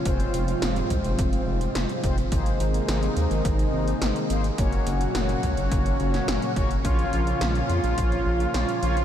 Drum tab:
HH |xxxxxxxxxx-xxxxx|xxxxxxxxxx-xxxxx|xxxxxxxxxxxxxxxx|xxxxxxxxxx-xxxxx|
SD |----o-------o---|----o-------o---|----o------oo---|----o-------o---|
BD |o-----o-o-----o-|o-------o-------|o-----o-o-----o-|o-------o-------|